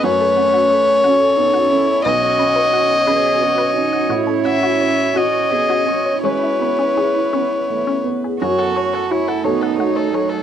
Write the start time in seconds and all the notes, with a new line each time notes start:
Already playing: C#4 B4 C#5
0.03 F#2 A3 F#4 A4 C#5
0.21 A4
0.37 C#4 F#5
0.53 F#4
0.70 A4 C#5
1.03 C#4 F#4 A4
1.36 B3 D#4
1.54 F#4
1.69 C#4 E4
1.88 C#5
2.05 B1 F#4 B4 C#5 D#5
2.22 D#5
2.38 C#4 B5
2.56 B4
2.73 F#4 F#5
3.06 C#4 G#4 B4
3.40 B3 F#4
3.58 B4
3.76 C#4 D#4
3.93 F#5
4.09 A2 C#4 E4 F#4 C#5
4.27 A4
4.44 C#4 E5 F#5
4.63 F#4
4.79 F#4 C#5
5.13 C#4 F#4 D#5
5.18 F#4
5.51 B3 G#4
5.70 F#4
5.86 C#4 F#4
6.06 C#5
6.23 G#3 B3 C#4 E4 B4 C#5
6.43 E4
6.60 B3 B4
6.79 C#4
6.97 E4 G#4
7.33 B3 C#4
7.70 A3
7.87 C#4
8.04 B3
8.24 G#4
8.40 F#2 A3 F#4 C#5
8.59 A4 F#5
8.76 C#5
8.94 A4 F#5
9.11 E4 F#4 C#5
9.28 A4 F#5
9.44 A3 B3 D#4 F#4 A4 C#5
9.62 A4 F#5
9.79 A3 F#4 C#5
9.96 A4 C#5
10.13 F#3 A4 C#5
10.29 A4